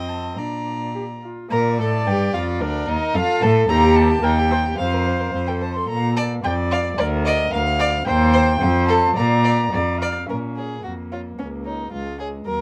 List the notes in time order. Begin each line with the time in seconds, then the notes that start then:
Already playing: F2 C4 D#5 G5
0.09 A5
0.37 A#2 D4 D5 A#5
0.95 G4
1.23 F4
1.50 A#2 A#4 D5 A#5
1.78 A2 A4 A5
2.06 G2 G4 G5
2.34 F2 F4 F5
2.61 D2 D4 A#4 D5
2.88 D#2 D#4 D#5
3.14 F2 F4 A4 F5
3.41 A2 A4 A5
3.69 D#2 D#4 G4 A#5
3.83 G4
3.95 D#4 A5
4.10 G4
4.22 D#2 D#4 A#4 G5
4.39 G4
4.51 D#4 C5
4.66 G4
4.78 F2 C5 F5
4.93 A#4
5.07 C5
5.20 A#4
5.34 F2 C5
5.47 A4 G5
5.61 C5 A5
5.75 A4 C6
5.88 A#2 A#5
6.16 D5 A5
6.44 F2 D5 G5
6.71 D5 F5
6.98 D2 A#4 D5
7.25 D5 D#5
7.52 D2 A#4 F5
7.79 D5
8.06 D#2 C5 G5
8.33 C5
8.60 F2 C5
8.88 A4 A5
9.16 A#2 D5 A#5
9.44 D5
9.72 F2 D5
10.01 D5 F5
10.29 A#2 C#4 A#4
10.56 G#4 C#5
10.84 F2 A#3 F#4
11.12 F4 C#5
11.38 C#2 C#4
11.65 D#4 C#5
11.92 C#2 G#3 F4
12.20 G#4 C#5
12.45 D#2 F#3 A#4